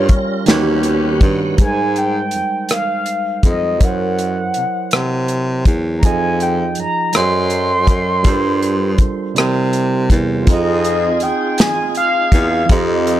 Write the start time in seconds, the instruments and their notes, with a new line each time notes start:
Already playing: tonewheel organ G3 C#4 F4 A#4, tine electric piano G3 G4 A#4 C#5 F5, soft synth lead C#5
0.09 baritone saxophone D#2, kick, closed hi-hat
0.46 tine electric piano D#3 D#4 F#4 G4 B4, tonewheel organ D#3 G3 B3 F#5, horn section B3 C#4 G4, snare, closed hi-hat
0.50 baritone saxophone D#2, tine electric piano C#5
0.83 closed hi-hat
1.21 baritone saxophone G2, kick, closed hi-hat
1.54 tine electric piano G#3 D#4
1.58 baritone saxophone G#2, tine electric piano G3, soft synth lead G#5, kick, closed hi-hat
1.62 tine electric piano A#4 B4
1.71 tine electric piano C5
1.96 soft synth lead G5, closed hi-hat
2.31 closed hi-hat
2.35 baritone saxophone F2
2.69 soft synth lead F5, cross-stick, closed hi-hat
3.06 closed hi-hat
3.43 baritone saxophone F2, soft synth lead D#5, kick, closed hi-hat
3.77 tine electric piano F#3 C#5, kick, closed hi-hat
3.82 baritone saxophone F#2, tine electric piano E4 A#4, soft synth lead F#5
3.87 tine electric piano C5
4.18 closed hi-hat
4.54 baritone saxophone C3, closed hi-hat
4.91 baritone saxophone C3, cross-stick, closed hi-hat
5.28 closed hi-hat
5.65 baritone saxophone E2, kick, closed hi-hat
5.98 tine electric piano F3, soft synth lead A#5
6.03 baritone saxophone F2, tine electric piano D#4 F4 G#4, soft synth lead G#5, kick, closed hi-hat
6.07 tine electric piano D#5
6.40 soft synth lead G5, closed hi-hat
6.75 closed hi-hat
6.79 baritone saxophone F#2, soft synth lead A#5
7.13 baritone saxophone F#2, tine electric piano F#3 F#4 G#4 C5, soft synth lead C6, cross-stick, closed hi-hat
7.18 tine electric piano A4 D#5
7.50 closed hi-hat
7.87 baritone saxophone F#2, kick, closed hi-hat
8.23 baritone saxophone G2, tine electric piano G3 D4 F4 A4, kick, closed hi-hat
8.27 tine electric piano A#4 C5
8.62 closed hi-hat
8.98 baritone saxophone C3, kick, closed hi-hat
9.34 tine electric piano C3 G3 E4 A#4, baritone saxophone C3, closed hi-hat
9.38 tine electric piano C5, cross-stick
9.73 closed hi-hat
10.10 baritone saxophone E2, kick, closed hi-hat
10.43 tine electric piano C4 F4
10.47 baritone saxophone F2, tonewheel organ D#4 F4 G#4, horn section D#4 F4 G#4, tine electric piano D#4 G#4, soft synth lead D#5, kick, closed hi-hat
10.54 tine electric piano D#5
10.84 closed hi-hat
11.20 baritone saxophone E2, soft synth lead G5, closed hi-hat
11.58 soft synth lead G#5, snare, closed hi-hat
11.95 soft synth lead F5, closed hi-hat
12.32 baritone saxophone E2, kick, closed hi-hat
12.65 tine electric piano F3 C4, tonewheel organ A4, closed hi-hat
12.70 baritone saxophone F2, horn section C4 D#4 G4, tine electric piano G4, soft synth lead D#5, kick
12.74 tine electric piano A4 D#5
13.07 closed hi-hat